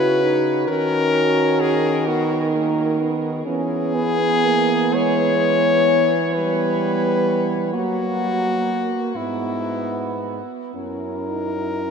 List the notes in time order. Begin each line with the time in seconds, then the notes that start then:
Already playing: C#3 E4 F#4 B4
0.24 D#4
0.68 D#3 C#4 F#4 A#4
1.60 G#4
2.07 B3 D#4 F#4
2.55 A#3
3.00 B3
3.45 E3 B3 C#4 G#4
3.94 B3
4.45 A#3
4.94 G#3 C#5
6.33 G3 B3 B4
7.73 F#3 A#3 F#4
9.16 G#2 B3 E4
10.75 F#2 C#4 E4 A#4
11.29 D#4
11.83 C#4